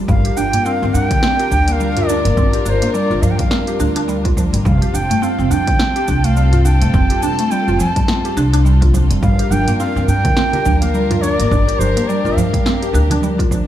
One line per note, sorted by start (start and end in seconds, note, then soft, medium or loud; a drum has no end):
0.07 0.21 G1 loud
0.07 4.61 G3 medium
0.07 0.24 G3 loud
0.07 4.61 D4 medium
0.07 4.61 F4 medium
0.07 4.61 A#4 medium
0.07 0.39 F5 loud
0.07 kick loud
0.07 shaker soft
0.25 0.36 G4 medium
0.25 closed hi-hat soft
0.25 shaker soft
0.37 0.50 G1 medium
0.37 0.53 D4 medium
0.37 0.67 G5 loud
0.37 shaker medium
0.53 0.64 A#3 medium
0.53 closed hi-hat medium
0.53 mid tom medium
0.53 shaker soft
0.66 0.81 C4 medium
0.66 0.96 F5 loud
0.66 shaker soft
0.82 0.92 G1 medium
0.82 0.93 C4 medium
0.82 shaker soft
0.94 1.07 G2 medium
0.94 1.09 D4 medium
0.94 1.05 F#5 loud
0.94 shaker medium
1.05 1.68 G5 loud
1.11 1.22 D3 loud
1.11 kick loud
1.11 closed hi-hat medium
1.11 shaker soft
1.23 1.39 C4 loud
1.23 snare medium
1.23 shaker soft
1.39 1.51 G4 medium
1.39 closed hi-hat soft
1.39 shaker soft
1.51 2.20 D2 medium
1.51 1.67 D4 medium
1.51 kick medium
1.51 shaker medium
1.68 1.79 A#3 medium
1.68 1.73 G5 loud
1.68 closed hi-hat medium
1.68 shaker soft
1.72 2.09 F5 loud
1.80 1.95 G3 medium
1.80 shaker soft
1.97 2.08 F4 medium
1.97 closed hi-hat soft
1.97 mid tom medium
1.97 shaker soft
2.08 2.24 D4 medium
2.08 2.66 D5 loud
2.08 shaker medium
2.25 2.34 G1 medium
2.25 2.32 A#3 medium
2.25 closed hi-hat medium
2.25 shaker soft
2.37 2.50 G1 medium
2.37 2.53 C4 loud
2.37 kick loud
2.37 shaker soft
2.53 2.65 G4 medium
2.53 closed hi-hat soft
2.53 shaker soft
2.65 2.79 G1 medium
2.65 2.81 D4 medium
2.65 2.93 C5 medium
2.65 2.70 D5 medium
2.65 shaker medium
2.82 2.93 A#3 medium
2.82 closed hi-hat medium
2.82 shaker soft
2.93 3.09 G3 medium
2.93 3.24 D5 medium
2.93 shaker soft
3.10 3.20 G1 medium
3.10 3.22 F4 medium
3.10 shaker soft
3.22 3.36 G2 medium
3.22 3.38 F3 loud
3.22 3.32 F5 medium
3.22 shaker medium
3.31 3.40 G5 medium
3.39 3.50 G3 medium
3.39 3.80 F5 loud
3.39 kick loud
3.39 closed hi-hat medium
3.39 mid tom medium
3.39 shaker soft
3.51 3.67 C4 loud
3.51 snare medium
3.51 shaker soft
3.67 3.79 G4 medium
3.67 closed hi-hat soft
3.67 shaker soft
3.79 4.48 D2 medium
3.79 3.95 D4 loud
3.79 shaker medium
3.96 4.08 D4 loud
3.96 closed hi-hat medium
3.96 shaker soft
4.08 4.23 G3 medium
4.08 shaker soft
4.25 4.36 F4 medium
4.25 kick loud
4.25 closed hi-hat soft
4.25 shaker soft
4.37 4.52 F3 loud
4.37 kick medium
4.37 shaker medium
4.53 4.63 G1 medium
4.53 4.64 G3 medium
4.53 closed hi-hat medium
4.53 shaker soft
4.65 4.79 F1 medium
4.65 4.81 G3 loud
4.65 13.67 G3 medium
4.65 9.19 C4 medium
4.65 11.47 F4 medium
4.65 9.19 A4 medium
4.65 4.96 F5 medium
4.65 kick loud
4.65 shaker soft
4.82 4.93 G4 medium
4.82 closed hi-hat soft
4.82 shaker soft
4.94 5.07 F1 medium
4.94 5.09 D4 medium
4.94 5.25 G5 medium
4.94 shaker medium
5.10 5.21 A3 medium
5.10 closed hi-hat medium
5.10 mid tom medium
5.10 shaker soft
5.22 5.37 C4 medium
5.22 5.53 F5 medium
5.22 shaker medium
5.39 5.48 F1 medium
5.39 5.50 C4 medium
5.39 shaker soft
5.50 5.64 F2 medium
5.50 5.66 D4 medium
5.50 6.26 G5 loud
5.50 shaker medium
5.67 5.79 D3 loud
5.67 kick loud
5.67 closed hi-hat medium
5.67 shaker soft
5.79 5.95 C4 loud
5.79 snare medium
5.79 shaker soft
5.96 6.07 G4 medium
5.96 closed hi-hat soft
5.96 shaker soft
6.08 6.76 C2 medium
6.08 6.24 D4 medium
6.08 kick medium
6.08 shaker medium
6.24 6.35 A3 medium
6.24 6.67 F5 loud
6.24 closed hi-hat medium
6.24 shaker soft
6.37 6.52 G3 medium
6.37 shaker soft
6.53 6.64 F4 medium
6.53 closed hi-hat soft
6.53 mid tom medium
6.53 shaker soft
6.65 6.81 D4 medium
6.65 7.24 G5 loud
6.65 shaker medium
6.81 6.91 F1 medium
6.81 6.89 A3 medium
6.81 closed hi-hat medium
6.81 shaker soft
6.94 7.07 F1 medium
6.94 7.10 C4 loud
6.94 kick loud
6.94 shaker soft
7.10 7.22 G4 medium
7.10 closed hi-hat soft
7.10 shaker soft
7.22 7.36 F1 medium
7.22 7.38 D4 medium
7.22 7.52 A5 loud
7.22 shaker medium
7.39 7.50 A3 medium
7.39 closed hi-hat medium
7.39 shaker soft
7.51 7.66 G3 medium
7.51 7.81 G5 loud
7.51 shaker soft
7.68 7.77 F1 medium
7.68 7.79 F4 medium
7.68 shaker soft
7.79 7.93 F2 medium
7.79 7.96 F3 loud
7.79 8.37 A5 loud
7.79 shaker medium
7.96 8.07 G3 medium
7.96 kick loud
7.96 closed hi-hat medium
7.96 mid tom medium
7.96 shaker soft
8.08 8.24 C4 loud
8.08 snare medium
8.08 shaker soft
8.25 8.36 G4 medium
8.25 closed hi-hat soft
8.25 shaker soft
8.36 9.05 C2 medium
8.36 8.52 D4 loud
8.36 shaker medium
8.53 8.65 D4 loud
8.53 closed hi-hat medium
8.53 shaker soft
8.65 8.80 G3 medium
8.65 shaker soft
8.82 8.93 F4 medium
8.82 kick loud
8.82 closed hi-hat soft
8.82 shaker soft
8.94 9.10 F3 medium
8.94 kick medium
8.94 shaker medium
9.10 9.20 F1 medium
9.10 9.21 G3 medium
9.10 closed hi-hat medium
9.10 shaker soft
9.22 9.36 G1 medium
9.22 9.38 G3 loud
9.22 13.67 D4 medium
9.22 13.67 A#4 medium
9.22 9.53 F5 loud
9.22 kick loud
9.22 shaker soft
9.39 9.50 G4 medium
9.39 closed hi-hat soft
9.39 shaker soft
9.51 9.64 G1 medium
9.51 9.67 D4 medium
9.51 9.78 G5 loud
9.51 high conga medium
9.51 shaker medium
9.68 9.79 A#3 medium
9.68 closed hi-hat soft
9.68 mid tom medium
9.68 shaker soft
9.79 9.95 C4 medium
9.79 10.06 F5 loud
9.79 shaker soft
9.95 10.06 G1 medium
9.95 10.07 C4 medium
9.95 high bongo soft
9.95 shaker soft
10.08 10.21 G2 medium
10.08 10.23 D4 medium
10.08 10.78 G5 loud
10.08 shaker medium
10.24 10.36 D3 loud
10.24 kick loud
10.24 closed hi-hat medium
10.24 high bongo soft
10.24 low conga medium
10.24 shaker soft
10.37 10.53 C4 loud
10.37 snare medium
10.37 shaker soft
10.53 10.65 G4 medium
10.53 closed hi-hat soft
10.53 low conga medium
10.53 shaker soft
10.65 11.34 D2 medium
10.65 10.81 D4 medium
10.65 kick medium
10.65 high bongo soft
10.65 high conga medium
10.65 shaker medium
10.81 10.93 A#3 medium
10.81 11.23 F5 loud
10.81 closed hi-hat medium
10.81 high conga medium
10.81 shaker soft
10.94 11.09 G3 medium
10.94 shaker soft
11.10 11.22 F4 medium
11.10 closed hi-hat soft
11.10 mid tom medium
11.10 high bongo medium
11.10 high conga medium
11.10 shaker soft
11.22 11.38 D4 medium
11.22 11.81 D5 loud
11.22 shaker medium
11.39 11.49 G1 medium
11.39 11.46 A#3 medium
11.39 closed hi-hat medium
11.39 shaker soft
11.51 11.64 G1 medium
11.51 11.66 D4 loud
11.51 13.67 G4 medium
11.51 kick loud
11.51 shaker soft
11.68 11.79 G4 medium
11.68 closed hi-hat soft
11.68 shaker soft
11.79 11.92 G1 medium
11.79 11.96 D4 medium
11.79 12.10 C5 medium
11.79 high conga medium
11.79 shaker medium
11.97 12.07 A#3 medium
11.97 closed hi-hat medium
11.97 shaker soft
12.08 12.23 G3 medium
12.08 12.39 D5 medium
12.08 shaker soft
12.24 12.34 G1 medium
12.24 12.36 F4 medium
12.24 high bongo soft
12.24 shaker soft
12.36 12.50 G2 medium
12.36 12.53 F3 loud
12.36 12.94 F5 loud
12.36 shaker medium
12.53 12.64 G3 medium
12.53 kick loud
12.53 closed hi-hat medium
12.53 mid tom medium
12.53 high bongo soft
12.53 shaker soft
12.66 12.81 C4 loud
12.66 snare medium
12.66 shaker soft
12.82 12.94 G4 medium
12.82 closed hi-hat soft
12.82 shaker soft
12.93 13.62 D2 medium
12.93 13.09 D4 loud
12.93 high bongo medium
12.93 shaker medium
13.10 13.22 D4 loud
13.10 closed hi-hat medium
13.10 high conga medium
13.10 low conga medium
13.10 shaker soft
13.22 13.38 G3 medium
13.22 high conga medium
13.22 shaker soft
13.39 13.50 F4 medium
13.39 kick loud
13.39 closed hi-hat soft
13.39 shaker soft
13.51 13.67 F3 medium
13.51 kick medium
13.51 shaker medium